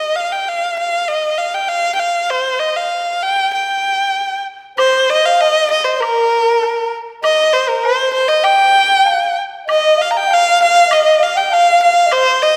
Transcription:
0.00 0.18 D#5 medium
0.16 0.34 F5 medium
0.32 0.50 G5 medium
0.49 0.79 F5 medium
0.79 1.10 F5 medium
1.08 1.40 D#5 medium
1.38 1.56 F5 medium
1.54 1.70 G5 medium
1.68 1.94 F5 medium
1.95 2.01 G5 medium
1.99 2.32 F5 medium
2.30 2.61 C5 medium
2.60 2.78 D#5 medium
2.76 3.24 F5 medium
3.22 3.53 G5 medium
3.54 4.42 G5 medium
4.77 5.21 C5 medium
4.77 5.11 C5 medium
4.77 high woodblock medium
5.10 5.27 D#5 medium
5.26 5.42 F5 medium
5.26 5.44 F5 medium
5.41 5.70 D#5 medium
5.41 5.72 D#5 medium
5.41 low woodblock soft
5.71 5.86 D#5 medium
5.71 6.03 D#5 medium
5.84 6.02 C5 medium
6.01 6.93 A#4 medium
6.01 high woodblock medium
6.63 low woodblock soft
7.23 7.48 D#5 medium
7.23 7.55 D#5 medium
7.23 high woodblock medium
7.48 7.57 D#5 soft
7.53 7.70 C5 medium
7.53 7.83 C5 medium
7.69 7.85 A#4 medium
7.83 8.13 C5 medium
7.83 8.12 C5 medium
7.83 low woodblock soft
8.13 8.29 C5 medium
8.13 8.30 C5 medium
8.28 8.45 D#5 medium
8.28 8.46 D#5 medium
8.43 8.97 G5 loud
8.43 9.38 G5 loud
8.43 high woodblock medium
8.97 9.07 G5 soft
9.05 9.37 F5 medium
9.05 low woodblock soft
9.66 9.99 D#5 medium
9.66 10.03 D#5 medium
9.66 high woodblock medium
9.98 10.19 F5 medium
9.98 10.12 F5 medium
10.11 10.18 A#5 medium
10.17 10.35 G5 medium
10.17 10.29 G5 medium
10.27 10.57 F5 medium
10.27 low woodblock soft
10.34 10.62 F5 loud
10.58 10.89 F5 medium
10.63 10.94 F5 loud
10.88 11.21 D#5 medium
10.88 high woodblock medium
10.93 11.25 D#5 medium
11.20 11.37 F5 medium
11.20 11.39 F5 medium
11.36 11.51 G5 medium
11.36 11.55 G5 medium
11.50 12.08 F5 medium
11.50 11.82 F5 medium
11.50 low woodblock soft
11.83 12.14 F5 medium
12.06 12.14 D#5 medium
12.11 12.44 C5 medium
12.11 12.45 C5 medium
12.11 high woodblock medium
12.42 12.57 D#5 medium

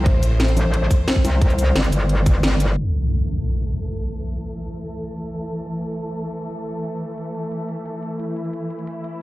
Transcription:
0.00 2.73 E3 medium
0.00 2.73 A3 medium
0.00 2.75 C5 medium
0.06 0.55 A1 loud
0.06 kick loud
0.06 closed hi-hat medium
0.14 cross-stick soft
0.23 closed hi-hat loud
0.23 shaker medium
0.31 cross-stick soft
0.40 snare loud
0.40 closed hi-hat medium
0.48 shaker soft
0.57 0.89 A1 loud
0.57 closed hi-hat loud
0.57 shaker medium
0.74 closed hi-hat medium
0.91 kick loud
0.91 closed hi-hat loud
0.91 shaker medium
1.08 snare loud
1.08 closed hi-hat medium
1.16 kick medium
1.24 1.74 C2 loud
1.24 cross-stick soft
1.24 snare soft
1.24 closed hi-hat loud
1.24 shaker medium
1.41 kick loud
1.41 closed hi-hat medium
1.50 cross-stick soft
1.50 shaker soft
1.59 closed hi-hat loud
1.59 shaker medium
1.67 cross-stick soft
1.75 1.91 G1 loud
1.75 snare loud
1.75 closed hi-hat medium
1.84 shaker soft
1.92 2.76 G1 loud
1.92 closed hi-hat loud
1.92 shaker medium
2.09 closed hi-hat medium
2.26 kick loud
2.26 closed hi-hat loud
2.26 shaker medium
2.35 cross-stick medium
2.43 snare loud
2.43 closed hi-hat medium
2.60 closed hi-hat loud
2.60 shaker medium
2.77 9.22 E3 medium
2.77 9.22 A3 medium
2.77 8.17 A4 medium
2.77 closed hi-hat medium
2.77 impact medium
3.28 closed hi-hat medium
3.45 closed hi-hat medium
3.62 closed hi-hat medium
3.79 closed hi-hat medium
3.96 closed hi-hat medium
4.13 closed hi-hat medium
4.30 closed hi-hat medium
4.38 closed hi-hat soft
4.47 closed hi-hat medium
4.64 closed hi-hat medium
4.72 closed hi-hat soft
4.80 closed hi-hat medium
4.97 closed hi-hat medium
5.14 closed hi-hat medium
5.31 closed hi-hat medium
5.48 closed hi-hat medium
5.65 closed hi-hat medium
5.74 closed hi-hat soft
5.82 closed hi-hat medium
5.99 closed hi-hat medium
6.08 closed hi-hat soft
6.16 closed hi-hat medium
6.33 closed hi-hat medium
6.50 closed hi-hat medium
6.67 closed hi-hat medium
6.84 closed hi-hat medium
7.01 closed hi-hat medium
7.09 closed hi-hat soft
7.18 closed hi-hat medium
7.35 closed hi-hat medium
7.43 closed hi-hat soft
7.52 closed hi-hat medium
7.69 closed hi-hat medium
7.86 closed hi-hat medium
8.03 closed hi-hat medium
8.20 9.22 E4 medium
8.20 closed hi-hat medium
8.36 closed hi-hat medium
8.45 closed hi-hat soft
8.53 closed hi-hat medium
8.70 closed hi-hat medium
8.79 closed hi-hat soft
8.87 closed hi-hat medium
9.04 closed hi-hat medium

